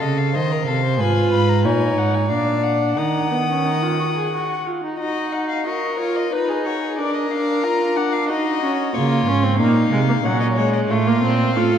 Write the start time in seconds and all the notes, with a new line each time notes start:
Already playing: A4
0.01 C#3 D#5
0.18 F5
0.35 D#3 C5 D#5
0.52 A#4
0.67 C3 A4 F5
0.84 C5
0.99 G#2 F4 B4 G#5
1.31 G#2 B5
1.49 A#5
1.64 A#2 D#4 C#5 G#5
1.97 G#2 F#5
2.14 G#5
2.30 A#2 D4 D5 F5
2.63 F#5
2.96 D#3 D#4 F#5 D#6
3.31 B3
3.49 C#4
3.65 D#4
3.82 F4
3.99 F#4
4.15 G#4
4.33 F#4
4.66 F4
4.84 D#4
4.99 D#4 F#4 D#5
5.32 F#5
5.49 F5
5.66 F#4 A#4 D#5
5.99 F4 C#5
6.16 D#5
6.32 D#4 B4
6.49 G#4
6.66 F#4 C#5
6.82 G#4
6.98 D4 A#4 D5
7.14 D#5
7.31 D4 F5
7.64 F4 A#5
7.96 D4 F#5
8.13 F5
8.29 D#4 F#4 D#5
8.62 C#4
8.94 C#3 A#3 F4 C#5
9.26 G#2 C#4
9.43 C4
9.59 A#2 A#3 D#4 F5
9.91 C3 G#3
10.08 A#3
10.24 A#2 F#3 C#4 F#5
10.40 D#5
10.56 G#3 C#5
10.73 D#5
10.89 A2 A3 F4 F5
11.07 A#3
11.22 A#2 C4
11.55 A2 F4 A4